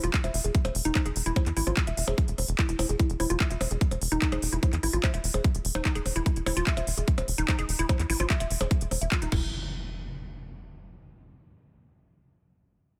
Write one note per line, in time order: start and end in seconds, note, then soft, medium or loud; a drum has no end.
0.04 0.10 E1 medium
0.04 0.08 F4 loud
0.04 closed hi-hat medium
0.14 kick loud
0.14 clap loud
0.14 closed hi-hat medium
0.24 0.30 E1 medium
0.24 0.30 E5 loud
0.24 closed hi-hat medium
0.24 percussion blips soft
0.34 0.40 E1 loud
0.34 0.40 E5 medium
0.34 open hi-hat loud
0.44 0.51 E1 medium
0.44 0.50 G#4 medium
0.44 closed hi-hat medium
0.55 kick loud
0.55 closed hi-hat medium
0.65 0.71 E1 medium
0.65 closed hi-hat medium
0.65 percussion blips medium
0.75 0.81 E1 loud
0.75 open hi-hat loud
0.85 0.91 E1 medium
0.85 0.88 D#4 loud
0.85 closed hi-hat medium
0.95 0.99 D#4 loud
0.95 kick loud
0.95 clap loud
0.95 closed hi-hat medium
0.95 percussion blips soft
1.06 1.12 F1 medium
1.06 1.08 G#4 loud
1.06 closed hi-hat medium
1.16 1.22 E1 loud
1.16 open hi-hat loud
1.26 1.32 E1 medium
1.26 1.30 E4 loud
1.26 closed hi-hat medium
1.36 1.42 E4 medium
1.36 kick loud
1.36 closed hi-hat medium
1.36 percussion blips medium
1.46 1.53 E2 medium
1.46 clap soft
1.46 closed hi-hat medium
1.57 1.63 A1 loud
1.57 1.59 E4 loud
1.57 open hi-hat loud
1.67 1.73 A1 loud
1.67 1.71 F4 loud
1.67 closed hi-hat medium
1.67 percussion blips soft
1.77 kick loud
1.77 clap loud
1.77 closed hi-hat medium
1.87 1.93 E1 medium
1.87 1.93 E5 loud
1.87 closed hi-hat medium
1.97 2.04 E1 loud
1.97 2.03 E5 medium
1.97 open hi-hat loud
2.08 2.14 E1 medium
2.08 2.14 G#4 medium
2.08 closed hi-hat medium
2.08 percussion blips medium
2.18 kick loud
2.18 closed hi-hat medium
2.28 2.34 E1 medium
2.28 closed hi-hat medium
2.38 2.44 E1 loud
2.38 open hi-hat loud
2.38 percussion blips soft
2.48 2.55 E1 medium
2.48 closed hi-hat medium
2.59 2.63 E4 medium
2.59 kick loud
2.59 clap loud
2.59 closed hi-hat medium
2.69 2.75 E1 medium
2.69 2.73 E4 medium
2.69 closed hi-hat medium
2.79 2.85 E1 loud
2.79 2.85 E4 medium
2.79 open hi-hat loud
2.79 percussion blips medium
2.89 2.96 E1 medium
2.89 2.93 G#4 medium
2.89 closed hi-hat medium
2.99 3.05 E4 medium
2.99 kick loud
2.99 closed hi-hat medium
3.10 3.16 E1 medium
3.10 closed hi-hat medium
3.20 3.26 E1 loud
3.20 3.22 E4 loud
3.20 open hi-hat loud
3.20 percussion blips soft
3.30 3.36 E1 medium
3.30 3.34 F4 loud
3.30 closed hi-hat medium
3.40 3.46 E5 medium
3.40 kick loud
3.40 clap loud
3.40 closed hi-hat medium
3.50 3.57 E1 medium
3.50 3.56 E5 loud
3.50 closed hi-hat medium
3.61 3.67 E1 medium
3.61 open hi-hat loud
3.61 percussion blips medium
3.71 3.77 E1 medium
3.71 3.77 G#4 medium
3.71 closed hi-hat medium
3.81 kick loud
3.81 closed hi-hat medium
3.91 3.98 E1 medium
3.91 closed hi-hat medium
3.91 percussion blips soft
4.02 4.08 E1 loud
4.02 open hi-hat loud
4.12 4.18 E1 medium
4.12 4.14 D#4 loud
4.12 closed hi-hat medium
4.22 4.26 D#4 loud
4.22 kick loud
4.22 clap loud
4.22 closed hi-hat medium
4.32 4.38 F1 medium
4.32 4.35 G#4 loud
4.32 closed hi-hat medium
4.32 percussion blips medium
4.42 4.49 E1 loud
4.42 open hi-hat loud
4.53 4.59 E1 medium
4.53 4.56 E4 loud
4.53 closed hi-hat medium
4.63 4.69 E4 medium
4.63 kick loud
4.63 closed hi-hat medium
4.63 percussion blips soft
4.73 4.79 E2 medium
4.73 clap soft
4.73 closed hi-hat medium
4.83 4.89 A1 loud
4.83 4.86 E4 loud
4.83 open hi-hat loud
4.93 5.00 A1 medium
4.93 4.97 F4 loud
4.93 closed hi-hat medium
5.04 5.09 E5 medium
5.04 kick loud
5.04 clap loud
5.04 closed hi-hat medium
5.04 percussion blips medium
5.14 5.20 E1 medium
5.14 5.20 E5 loud
5.14 closed hi-hat medium
5.24 5.30 E1 loud
5.24 open hi-hat loud
5.34 5.40 E1 medium
5.34 5.40 G#4 medium
5.34 closed hi-hat medium
5.34 percussion blips soft
5.44 kick loud
5.44 closed hi-hat medium
5.55 5.61 E1 medium
5.55 closed hi-hat medium
5.65 5.71 E1 loud
5.65 open hi-hat loud
5.75 5.81 E1 medium
5.75 5.77 D#4 loud
5.75 percussion blips medium
5.85 5.89 D#4 loud
5.85 kick loud
5.85 clap loud
5.85 closed hi-hat medium
5.95 6.02 E1 medium
5.95 5.98 G#4 loud
5.95 closed hi-hat medium
6.06 6.12 E1 loud
6.06 open hi-hat loud
6.06 percussion blips soft
6.16 6.22 E1 medium
6.16 6.20 E4 loud
6.16 closed hi-hat medium
6.26 6.32 E4 medium
6.26 kick loud
6.26 closed hi-hat medium
6.36 6.42 E1 medium
6.36 closed hi-hat medium
6.46 6.53 E1 loud
6.46 6.49 E4 loud
6.46 open hi-hat loud
6.46 percussion blips medium
6.57 6.63 E1 loud
6.57 6.61 F4 loud
6.57 closed hi-hat medium
6.67 6.73 E5 medium
6.67 kick loud
6.67 clap loud
6.67 closed hi-hat medium
6.77 6.83 E1 medium
6.77 6.83 E5 loud
6.77 closed hi-hat medium
6.77 percussion blips soft
6.87 6.93 E1 loud
6.87 open hi-hat loud
6.97 7.04 E1 medium
6.97 7.03 G#4 medium
6.97 closed hi-hat medium
7.08 kick loud
7.08 closed hi-hat medium
7.18 7.24 E1 medium
7.18 closed hi-hat medium
7.18 percussion blips medium
7.28 7.34 E1 loud
7.28 open hi-hat loud
7.38 7.44 E1 medium
7.38 7.41 D#4 loud
7.38 closed hi-hat medium
7.48 7.52 D#4 loud
7.48 kick loud
7.48 clap loud
7.48 closed hi-hat medium
7.48 percussion blips soft
7.59 7.65 F1 medium
7.59 7.61 G#4 loud
7.59 closed hi-hat medium
7.69 7.75 E1 loud
7.69 open hi-hat loud
7.79 7.85 E1 medium
7.79 7.83 E4 loud
7.79 closed hi-hat medium
7.89 7.95 E4 medium
7.89 kick loud
7.89 closed hi-hat medium
7.89 percussion blips medium
7.99 8.06 E2 medium
7.99 clap soft
7.99 closed hi-hat medium
8.10 8.16 A1 loud
8.10 8.12 E4 loud
8.10 open hi-hat loud
8.20 8.26 A1 loud
8.20 8.24 F4 loud
8.20 closed hi-hat medium
8.20 percussion blips soft
8.30 8.36 E5 medium
8.30 kick loud
8.30 clap loud
8.30 closed hi-hat medium
8.40 8.47 E1 medium
8.40 8.46 E5 loud
8.40 closed hi-hat medium
8.51 8.57 E1 loud
8.51 open hi-hat loud
8.61 8.67 E1 medium
8.61 8.67 G#4 medium
8.61 closed hi-hat medium
8.61 percussion blips medium
8.71 kick loud
8.71 closed hi-hat medium
8.81 8.87 E1 medium
8.81 closed hi-hat medium
8.91 8.98 E1 loud
8.91 open hi-hat loud
8.91 percussion blips soft
9.01 9.08 E1 medium
9.01 9.05 E5 medium
9.01 closed hi-hat medium
9.12 9.16 F4 medium
9.12 kick loud
9.12 clap loud
9.12 closed hi-hat medium
9.22 9.28 E1 medium
9.22 9.28 D#4 medium
9.22 closed hi-hat medium
9.32 9.51 E1 loud
9.32 9.51 E4 medium
9.32 kick loud
9.32 crash medium
9.32 impact medium